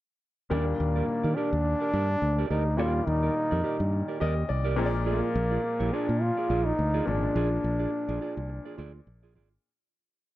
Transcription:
0.50 D#2 A#2 D#3 G3 A#3 D4 G4 A#4 D5
0.67 muted clean electric guitar stroke
0.80 D#2, muted clean electric guitar stroke
0.96 G4 A#4 D5
1.08 muted clean electric guitar stroke, muted fingered electric bass stroke
1.23 D#3 G4 A#4 D5
1.36 D4 G4 A#4 D5
1.52 D#2, muted clean electric guitar stroke
1.65 muted clean electric guitar stroke
1.80 G4 A#4 D5
1.93 G2 G4 A#4 D5
2.10 muted clean electric guitar stroke
2.22 D2, muted clean electric guitar stroke
2.38 G4 A#4 D5
2.49 D2 D#4 G4 A#4 D5
2.66 muted clean electric guitar stroke
2.77 D#2 A#2 D#3 G3 F4 G4 A#4 D5
2.95 muted clean electric guitar stroke
3.07 D#2 D#4, muted clean electric guitar stroke
3.23 G4 A#4 D5
3.36 muted clean electric guitar stroke
3.51 F2 G4 A#4 D5
3.64 G4 A#4 D5
3.79 G2, muted clean electric guitar stroke
3.92 muted clean electric guitar stroke
4.08 G4 A#4 D5
4.20 D#2 G4 A#4 D5 D#5
4.37 muted clean electric guitar stroke
4.49 C2 D5, muted clean electric guitar stroke
4.64 G4 A#4 D5
4.76 A#1 A#2 F3 G#3 C4 F4 G#4 A#4 D5
4.86 D5
4.94 muted clean electric guitar stroke
5.06 A#3 F4 G#4 D5
5.23 muted clean electric guitar stroke
5.35 A#1, muted clean electric guitar stroke
5.51 F4 G#4 D5
5.64 muted clean electric guitar stroke
5.80 A#1 F4 G#4 D5
5.93 D4 F4 G#4 D5
6.09 A#2, muted clean electric guitar stroke
6.22 F4, muted clean electric guitar stroke
6.37 F4 G#4 D5
6.50 A#1 F4 G#4 D5
6.66 D#4, muted clean electric guitar stroke
6.78 D2, muted clean electric guitar stroke
6.94 F4 G#4 D5
7.05 G#1 A#2 F3 G#3 D4, muted clean electric guitar stroke
7.23 muted clean electric guitar stroke
7.36 A#1 F4 G#4 D5
7.52 muted clean electric guitar stroke
7.63 A#1, muted clean electric guitar stroke
7.79 F4 G#4 D5
7.92 muted clean electric guitar stroke
8.09 A#1 F4 G#4 D5
8.21 F4 G#4 D5
8.37 C2, muted clean electric guitar stroke
8.49 muted clean electric guitar stroke
8.65 F4 G#4 D5
8.78 D2 F4 G#4 D5
8.95 muted clean electric guitar stroke
9.07 A#1, muted clean electric guitar stroke
9.23 F4 G#4 D5
9.35 G#1 F4 G#4 D5
9.51 muted clean electric guitar stroke

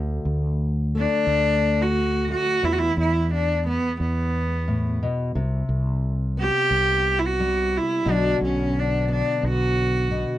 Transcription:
Already playing: D2
0.25 D2
0.95 A3 D4
1.27 D2
1.82 F#4
2.30 D2 F#4
2.63 E2 E4
2.72 F#4
2.79 E4
2.97 E2 E4
3.34 D4
3.66 B3
4.00 E2 B3
4.68 A2
5.03 B2
5.35 C2 C3
5.69 C2
6.37 B3 G4
6.71 C2
7.19 E4
7.26 F#4
7.40 G3
7.78 E4
8.05 B1 B2 D3 F#3 B3 F#4
8.10 D4
8.41 B1 C#4
8.79 D4
9.08 B3 D4
9.43 B1
9.48 F#4
10.11 B2

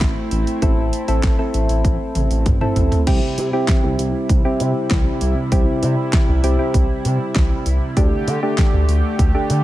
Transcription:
Already playing: A3 C4 E4
0.01 A1, kick, snare, clap, closed hi-hat
0.31 A1, closed hi-hat
0.47 closed hi-hat
0.62 A1 C4 E4 A4, kick, closed hi-hat
0.78 A1
0.93 closed hi-hat
1.08 A1 C4 E4 A4, closed hi-hat
1.23 A1, kick, snare, clap, closed hi-hat
1.39 C4 E4 A4
1.54 A1, closed hi-hat
1.69 A1, closed hi-hat
1.85 A1, kick, closed hi-hat, high tom
2.15 A1, closed hi-hat, mid tom
2.31 A1, closed hi-hat
2.46 A1, kick, closed hi-hat, mid tom
2.61 C4 E4 A4, mid tom
2.76 A1, closed hi-hat, floor tom
2.92 closed hi-hat, floor tom
3.07 C2 C3 G3 C4 E4 G4, kick, closed hi-hat, crash
3.38 C3, closed hi-hat
3.53 C4 E4 G4
3.68 kick, snare, clap, closed hi-hat
3.84 C2
3.99 C2, closed hi-hat
4.29 C2, kick, closed hi-hat
4.45 C4 E4 G4
4.60 C3, closed hi-hat
4.91 C2, kick, snare, clap, closed hi-hat
5.21 C2, closed hi-hat
5.52 C2 C4 E4 G4, kick, closed hi-hat
5.83 C3, closed hi-hat
6.13 kick, snare, clap, closed hi-hat
6.28 C2
6.44 C2 C4 E4 G4, closed hi-hat
6.59 C4 E4 G4
6.74 C2, kick, closed hi-hat
7.05 C3, closed hi-hat
7.36 C2, kick, snare, clap, closed hi-hat
7.66 C2, closed hi-hat
7.97 D2 D3 A3 D4 G4, kick, closed hi-hat
8.27 D3, closed hi-hat
8.43 A3 D4 G4
8.58 kick, snare, clap, closed hi-hat
8.73 D2
8.89 D2, closed hi-hat
9.19 D2, kick, closed hi-hat
9.35 A3 D4 G4
9.50 D3, closed hi-hat

